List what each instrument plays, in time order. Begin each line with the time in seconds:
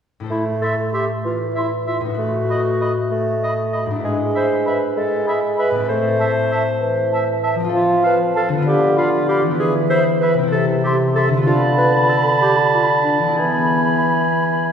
0.20 harp A2 E4 A4
0.26 harp C5
0.30 bassoon A3, clarinet E4
0.61 clarinet A4, oboe E5, flute section C6
0.93 clarinet G4, oboe E5, flute section C6
1.25 bassoon E3, clarinet F4
1.55 clarinet E4, oboe E5, flute section C6
1.87 clarinet F4, oboe E5, flute section C6
2.01 harp A2
2.05 harp D#4
2.10 harp F#4
2.15 bassoon A3, harp B4
2.19 clarinet F#4
2.50 oboe D#5, flute section B5
2.81 oboe D#5, flute section B5
3.11 bassoon A3
3.43 oboe D#5, flute section B5
3.73 oboe D#5, flute section B5
3.86 harp G#2
3.91 harp D4
3.96 harp E4
4.00 harp B4
4.04 bassoon G#3, clarinet G#4
4.35 clarinet C5, oboe E5, flute section B5
4.65 clarinet B4, oboe E5, flute section B5
4.97 bassoon G#3, clarinet A4
5.27 clarinet G#4, oboe E5, flute section B5
5.57 clarinet B4, oboe E5, flute section B5
5.71 harp A2
5.75 harp C4
5.80 harp E4
5.85 harp A4, clarinet C5
5.90 bassoon A3
6.19 oboe E5, flute section A5
6.51 oboe E5, flute section A5
6.81 bassoon E3
7.12 oboe E5, flute section A5
7.43 oboe E5, flute section A5
7.55 harp F3
7.60 harp C4
7.64 harp F4
7.69 harp A4
7.73 bassoon F3, clarinet F4
8.02 clarinet B4, oboe F5, flute section A5
8.35 clarinet A4, oboe F5, flute section A5
8.49 harp D3
8.53 harp B3
8.58 harp F4
8.62 harp B4
8.66 bassoon D3, clarinet G4
8.97 clarinet F4, oboe F5, flute section B5
9.28 clarinet G4, oboe F5, flute section B5
9.42 harp E3
9.46 harp B3
9.51 harp E4
9.55 harp B4
9.60 bassoon E3, clarinet G#4
9.90 clarinet C5, oboe E5, flute section B5
10.21 clarinet B4, oboe E5, flute section B5
10.34 harp C3
10.39 harp C4
10.43 harp E4
10.47 harp A4
10.52 bassoon C3, clarinet A4
10.84 clarinet G4, oboe E5, flute section C6
11.15 clarinet A4, oboe E5, flute section C6
11.28 harp D3
11.33 harp B3
11.37 harp F4
11.42 harp A4
11.46 bassoon D3, clarinet F4, oboe A5, flute section B5
11.77 clarinet B4
12.09 clarinet A4
12.42 clarinet G4
12.74 clarinet F4
13.04 clarinet D4
13.19 harp E3
13.24 harp B3
13.28 harp E4
13.33 harp G#4
13.37 bassoon E3, clarinet B3, oboe G#5, flute section B5